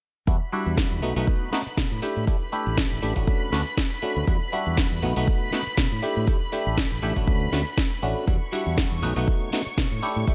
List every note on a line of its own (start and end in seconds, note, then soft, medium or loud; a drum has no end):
0.27 0.38 E2 medium
0.27 0.36 G3 medium
0.27 0.36 D4 medium
0.27 0.37 E4 medium
0.27 0.37 F#4 medium
0.27 8.29 B5 medium
0.27 kick loud
0.52 1.00 G3 medium
0.52 1.00 D4 medium
0.52 1.00 E4 medium
0.52 1.00 F#4 medium
0.66 0.84 E2 medium
0.77 kick loud
0.77 snare loud
0.92 1.02 E2 medium
1.02 1.13 B1 medium
1.02 1.13 A3 medium
1.02 1.13 B3 medium
1.02 1.13 D#4 medium
1.02 1.13 F#4 medium
1.16 1.25 B1 medium
1.16 1.50 A3 medium
1.16 1.50 B3 medium
1.16 1.50 D#4 medium
1.16 1.50 F#4 medium
1.27 kick loud
1.52 1.61 A3 medium
1.52 1.61 B3 medium
1.52 1.62 D#4 medium
1.52 1.62 F#4 medium
1.52 snare medium
1.67 muted fingered electric bass stroke soft
1.77 1.88 B2 medium
1.77 kick loud
1.77 snare loud
1.91 2.00 A2 medium
2.02 2.25 A3 medium
2.02 2.25 D4 medium
2.02 2.25 E4 medium
2.02 2.25 G4 medium
2.17 2.25 A2 medium
2.27 2.36 A3 medium
2.27 2.36 D4 medium
2.27 2.37 E4 medium
2.27 2.37 G4 medium
2.27 kick loud
2.52 3.00 A3 medium
2.52 3.00 D4 medium
2.52 3.00 E4 medium
2.52 3.00 G4 medium
2.67 2.84 A1 medium
2.78 kick loud
2.78 snare loud
2.92 3.00 A1 medium
3.02 3.13 A1 medium
3.02 3.13 A3 medium
3.02 3.13 D4 medium
3.02 3.13 E4 medium
3.02 3.13 G4 medium
3.16 3.25 A1 medium
3.16 3.50 C#4 medium
3.16 3.50 D4 medium
3.16 3.50 F#4 medium
3.16 kick medium
3.28 kick loud
3.52 3.63 D2 loud
3.52 3.61 A3 medium
3.52 3.61 C#4 medium
3.52 3.62 D4 medium
3.52 3.62 F#4 medium
3.52 snare medium
3.78 kick loud
3.78 snare loud
4.02 4.25 A3 medium
4.02 4.25 C#4 medium
4.02 4.25 D4 medium
4.02 4.25 F#4 medium
4.02 muted fingered electric bass stroke soft
4.16 4.25 D2 medium
4.27 4.36 G3 medium
4.27 4.36 D4 medium
4.27 4.37 E4 medium
4.27 4.37 F#4 medium
4.27 kick loud
4.52 5.00 G3 medium
4.52 5.00 D4 medium
4.52 5.00 E4 medium
4.52 5.00 F#4 medium
4.67 4.84 E2 medium
4.77 kick loud
4.77 snare loud
4.92 5.04 E2 medium
5.02 5.13 B1 medium
5.02 5.13 A3 medium
5.02 5.13 B3 medium
5.02 5.13 D#4 medium
5.02 5.13 F#4 medium
5.16 5.25 B1 medium
5.16 5.50 A3 medium
5.16 5.50 B3 medium
5.16 5.50 D#4 medium
5.16 5.50 F#4 medium
5.28 kick loud
5.52 5.61 A3 medium
5.52 5.61 B3 medium
5.52 5.62 D#4 medium
5.52 5.62 F#4 medium
5.52 snare medium
5.67 muted fingered electric bass stroke soft
5.77 5.88 B2 medium
5.77 kick loud
5.77 snare loud
5.92 6.00 A2 medium
6.02 6.25 A3 medium
6.02 6.25 D4 medium
6.02 6.25 E4 medium
6.02 6.25 G4 medium
6.17 6.25 A2 medium
6.27 6.36 A3 medium
6.27 6.36 D4 medium
6.27 6.37 E4 medium
6.27 6.37 G4 medium
6.27 kick loud
6.52 7.00 A3 medium
6.52 7.00 D4 medium
6.52 7.00 E4 medium
6.52 7.00 G4 medium
6.67 6.84 A1 medium
6.78 kick loud
6.78 snare loud
6.92 7.00 A1 medium
7.02 7.13 A1 medium
7.02 7.13 A3 medium
7.02 7.13 D4 medium
7.02 7.13 E4 medium
7.02 7.13 G4 medium
7.16 7.25 A1 medium
7.16 7.50 A3 medium
7.16 7.50 C#4 medium
7.16 7.50 D4 medium
7.16 7.50 F#4 medium
7.16 kick medium
7.28 7.47 D2 medium
7.28 kick loud
7.52 7.63 D2 medium
7.52 7.61 A3 medium
7.52 7.61 C#4 medium
7.52 7.62 D4 medium
7.52 7.62 F#4 medium
7.52 snare medium
7.78 kick loud
7.78 snare loud
8.02 8.13 A1 medium
8.02 8.25 A3 medium
8.02 8.25 C#4 medium
8.02 8.25 D4 medium
8.02 8.25 F#4 medium
8.27 8.38 E2 medium
8.27 8.36 G3 medium
8.27 8.36 D4 medium
8.27 8.37 E4 medium
8.27 8.37 F#4 medium
8.27 10.35 C#6 medium
8.27 kick loud
8.52 9.00 G3 medium
8.52 9.00 D4 medium
8.52 9.00 E4 medium
8.52 9.00 F#4 medium
8.52 open hi-hat medium
8.67 8.84 E2 medium
8.78 kick loud
8.78 snare loud
8.91 9.04 E2 medium
9.02 9.13 B1 medium
9.02 9.13 A3 medium
9.02 9.13 B3 medium
9.02 9.13 D#4 medium
9.02 9.13 F#4 medium
9.02 open hi-hat medium
9.16 9.24 B1 medium
9.16 9.50 A3 medium
9.16 9.50 B3 medium
9.16 9.50 D#4 medium
9.16 9.50 F#4 medium
9.28 kick loud
9.52 9.61 A3 medium
9.52 9.61 B3 medium
9.52 9.61 D#4 medium
9.52 9.62 F#4 medium
9.52 snare medium
9.52 open hi-hat loud
9.66 muted fingered electric bass stroke soft
9.78 9.88 B2 medium
9.78 kick loud
9.78 snare loud
9.91 10.00 A2 medium
10.02 10.25 A3 medium
10.02 10.25 D4 medium
10.02 10.25 E4 medium
10.02 10.25 G4 medium
10.02 open hi-hat medium
10.16 10.24 A2 medium
10.27 10.35 A3 medium
10.27 10.35 D4 medium
10.27 10.35 E4 medium
10.27 10.35 G4 medium
10.27 kick loud